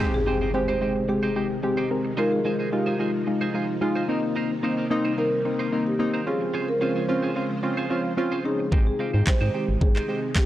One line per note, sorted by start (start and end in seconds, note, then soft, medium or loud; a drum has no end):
0.00 4.05 C3 medium
0.00 4.05 D#3 medium
0.00 0.21 G#3 medium
0.00 4.05 G#3 medium
0.00 0.21 C4 medium
0.00 0.13 D#4 medium
0.00 6.23 D#4 medium
0.00 0.13 G4 medium
0.00 0.21 G4 loud
0.00 0.13 G#4 medium
0.00 0.13 C5 medium
0.00 impact medium
0.14 0.51 G#4 medium
0.26 0.48 G#3 medium
0.26 0.48 C4 medium
0.26 0.37 D#4 medium
0.26 0.49 G4 medium
0.26 0.38 G4 medium
0.26 0.38 C5 medium
0.41 0.51 D#4 medium
0.41 0.51 G4 medium
0.41 0.51 C5 medium
0.54 0.76 G#3 medium
0.54 0.76 C4 medium
0.54 0.76 G4 loud
0.54 0.61 C5 loud
0.54 muted clean electric guitar stroke soft
0.68 0.80 D#4 medium
0.68 0.81 G4 medium
0.68 0.80 C5 medium
0.68 1.10 C5 loud
0.81 1.03 G#3 medium
0.81 1.03 C4 medium
0.81 0.92 D#4 medium
0.81 0.92 G4 medium
0.81 1.03 G4 medium
0.81 0.92 C5 medium
0.96 muted clean electric guitar stroke medium
1.08 1.30 G#3 medium
1.08 1.30 C4 medium
1.08 1.31 G4 medium
1.08 1.60 G#4 loud
1.08 muted clean electric guitar stroke soft
1.23 1.34 D#4 medium
1.23 1.35 G4 medium
1.23 1.35 C5 medium
1.36 1.58 G#3 medium
1.36 1.58 C4 medium
1.36 1.46 D#4 medium
1.36 1.58 G4 medium
1.36 1.47 G4 medium
1.36 1.47 C5 medium
1.63 1.85 G#3 medium
1.63 1.85 C4 medium
1.63 2.19 G4 medium
1.63 1.85 G4 loud
1.63 muted clean electric guitar stroke soft
1.77 1.89 D#4 medium
1.77 1.89 G4 medium
1.77 1.89 C5 medium
1.90 2.12 G#3 medium
1.90 2.12 C4 medium
1.90 2.12 A#4 medium
1.90 muted clean electric guitar stroke soft
2.05 muted clean electric guitar stroke soft
2.17 4.07 F3 medium
2.17 2.39 G#3 loud
2.17 2.31 D#4 medium
2.17 2.40 D#4 medium
2.17 2.40 F4 loud
2.17 2.31 G#4 medium
2.17 2.31 A#4 loud
2.17 2.32 C5 medium
2.32 2.69 G#4 medium
2.45 2.67 G#3 medium
2.45 2.55 D#4 medium
2.45 2.67 D#4 medium
2.45 2.67 F4 medium
2.45 2.56 G#4 medium
2.45 2.56 C5 medium
2.59 2.69 D#4 soft
2.59 2.69 G#4 medium
2.59 2.69 C5 medium
2.72 2.94 G#3 loud
2.72 2.94 D#4 medium
2.72 2.94 F4 loud
2.72 2.85 G4 medium
2.72 muted clean electric guitar stroke soft
2.86 2.98 D#4 medium
2.86 2.99 G#4 medium
2.86 2.98 C5 medium
2.99 3.21 G#3 medium
2.99 3.10 D#4 medium
2.99 3.21 D#4 medium
2.99 3.50 F4 medium
2.99 3.21 F4 medium
2.99 3.10 G#4 medium
2.99 3.11 C5 medium
3.14 muted clean electric guitar stroke soft
3.27 3.49 G#3 medium
3.27 3.49 D#4 medium
3.27 3.49 F4 medium
3.27 muted clean electric guitar stroke soft
3.41 3.52 D#4 medium
3.41 3.53 G#4 medium
3.41 3.53 C5 medium
3.54 3.76 G#3 medium
3.54 3.64 D#4 medium
3.54 3.76 D#4 medium
3.54 3.76 F4 medium
3.54 3.65 G#4 medium
3.54 3.65 C5 medium
3.81 4.03 G#3 loud
3.81 4.03 D#4 loud
3.81 4.03 F4 loud
3.81 muted clean electric guitar stroke soft
3.96 4.07 D#4 medium
3.96 4.08 G#4 medium
3.96 4.08 C5 medium
4.08 6.25 C3 medium
4.08 6.25 D#3 medium
4.08 6.25 G3 medium
4.08 4.53 A#3 medium
4.08 6.25 A#3 medium
4.08 4.53 C4 medium
4.08 4.19 D#4 medium
4.08 4.53 D#4 loud
4.08 4.19 A#4 medium
4.08 4.20 C5 medium
4.23 muted clean electric guitar stroke soft
4.36 4.49 D#4 medium
4.36 4.50 A#4 medium
4.36 4.50 C5 medium
4.63 4.85 A#3 medium
4.63 4.85 C4 medium
4.63 4.74 D#4 medium
4.63 4.85 D#4 medium
4.63 4.74 A#4 medium
4.63 4.74 C5 medium
4.77 4.87 D#4 medium
4.77 4.87 A#4 medium
4.77 4.87 C5 medium
4.90 5.12 A#3 loud
4.90 5.12 C4 loud
4.90 5.12 D#4 loud
5.05 5.16 D#4 medium
5.05 5.17 A#4 medium
5.05 5.17 C5 medium
5.17 5.39 A#3 medium
5.17 5.40 C4 medium
5.17 5.28 D#4 medium
5.17 5.40 D#4 medium
5.17 5.28 A#4 medium
5.17 5.89 A#4 medium
5.17 5.29 C5 medium
5.33 muted clean electric guitar stroke soft
5.45 5.67 A#3 medium
5.45 5.67 C4 medium
5.45 5.67 D#4 medium
5.45 muted clean electric guitar stroke soft
5.59 5.71 D#4 medium
5.59 5.71 A#4 medium
5.59 5.71 C5 medium
5.72 5.94 A#3 medium
5.72 5.94 C4 medium
5.72 5.83 D#4 medium
5.72 5.94 D#4 medium
5.72 5.83 A#4 medium
5.72 5.83 C5 medium
5.86 6.28 G4 medium
5.86 muted clean electric guitar stroke soft
5.99 6.21 A#3 medium
5.99 6.21 C4 medium
5.99 6.21 D#4 loud
5.99 muted clean electric guitar stroke soft
6.14 6.26 D#4 medium
6.14 6.26 A#4 medium
6.14 6.26 C5 medium
6.27 8.70 C#3 medium
6.27 8.70 F3 medium
6.27 8.70 G#3 medium
6.27 6.71 C4 medium
6.27 6.71 C#4 medium
6.27 8.70 F4 medium
6.27 6.71 F4 medium
6.27 6.70 G#4 medium
6.27 8.70 C5 medium
6.27 muted clean electric guitar stroke soft
6.41 muted clean electric guitar stroke soft
6.54 6.67 F4 medium
6.54 6.68 G#4 medium
6.54 6.68 C5 medium
6.69 6.80 A#4 medium
6.81 7.03 C4 medium
6.81 7.03 C#4 medium
6.81 6.92 F4 medium
6.81 7.03 F4 medium
6.81 6.92 G#4 medium
6.81 7.87 C5 loud
6.81 6.92 C5 medium
6.95 7.06 F4 medium
6.95 7.05 G#4 medium
6.95 7.05 C5 medium
7.08 7.30 C4 loud
7.08 7.30 C#4 medium
7.08 7.30 F4 loud
7.08 muted clean electric guitar stroke soft
7.23 7.34 F4 medium
7.23 7.35 G#4 medium
7.23 7.35 C5 medium
7.35 7.58 C4 medium
7.35 7.58 C#4 medium
7.35 7.46 F4 medium
7.35 7.58 F4 medium
7.35 7.47 G#4 medium
7.35 7.47 C5 medium
7.50 muted clean electric guitar stroke soft
7.63 7.85 C4 medium
7.63 7.85 C#4 medium
7.63 7.85 F4 medium
7.63 muted clean electric guitar stroke soft
7.77 7.89 F4 medium
7.77 7.90 G#4 medium
7.77 7.89 C5 medium
7.90 8.12 C4 medium
7.90 8.12 C#4 medium
7.90 8.01 F4 medium
7.90 8.12 F4 medium
7.90 8.01 G#4 medium
7.90 8.01 C5 medium
8.05 muted clean electric guitar stroke soft
8.17 8.39 C4 loud
8.17 8.39 C#4 loud
8.17 8.39 F4 loud
8.17 muted clean electric guitar stroke soft
8.32 8.44 F4 medium
8.32 8.44 G#4 medium
8.32 8.44 C5 medium
8.45 8.66 C4 medium
8.45 8.67 C#4 medium
8.45 8.67 D#4 medium
8.45 8.86 G#4 medium
8.45 muted clean electric guitar stroke soft
8.59 muted clean electric guitar stroke soft
8.72 8.91 G#1 loud
8.72 10.46 C3 medium
8.72 10.46 D#3 medium
8.72 8.94 G#3 medium
8.72 10.46 G#3 medium
8.72 8.94 C4 medium
8.72 8.86 D#4 medium
8.72 10.46 D#4 medium
8.72 8.94 G4 loud
8.72 8.86 G4 medium
8.72 8.86 C5 medium
8.72 kick loud
8.87 9.24 G#4 medium
8.99 9.21 G#3 medium
8.99 9.21 C4 medium
8.99 9.10 D#4 medium
8.99 9.21 F4 medium
8.99 9.10 G4 medium
8.99 9.11 C5 medium
9.13 9.23 G#2 medium
9.13 9.24 D#4 soft
9.13 9.23 G4 medium
9.13 9.23 C5 medium
9.26 9.33 G#2 soft
9.26 9.48 G#3 loud
9.26 9.48 C4 medium
9.26 9.49 G4 loud
9.26 9.40 C5 loud
9.26 muted clean electric guitar stroke soft
9.26 kick loud
9.26 snare medium
9.26 clap loud
9.41 9.50 G#2 loud
9.41 9.52 D#4 medium
9.41 9.53 G4 medium
9.41 9.53 C5 medium
9.41 9.79 C5 loud
9.54 9.76 G#3 medium
9.54 9.76 C4 medium
9.54 9.64 D#4 medium
9.54 9.65 G4 medium
9.54 9.76 G4 medium
9.54 9.65 C5 medium
9.68 9.77 G#1 medium
9.68 muted clean electric guitar stroke soft
9.81 10.00 G#1 loud
9.81 10.03 G#3 medium
9.81 10.03 C4 medium
9.81 10.03 G4 medium
9.81 10.38 G#4 loud
9.81 muted clean electric guitar stroke soft
9.81 kick loud
9.95 10.07 D#4 medium
9.95 10.08 G4 medium
9.95 10.07 C5 medium
9.95 clap medium
10.08 10.30 G#3 medium
10.08 10.30 C4 medium
10.08 10.19 D#4 medium
10.08 10.30 G4 medium
10.08 10.19 G4 medium
10.08 10.20 C5 medium
10.35 10.46 G#3 medium
10.35 10.46 C4 medium
10.35 10.46 G4 loud
10.35 kick loud
10.35 snare medium
10.35 clap loud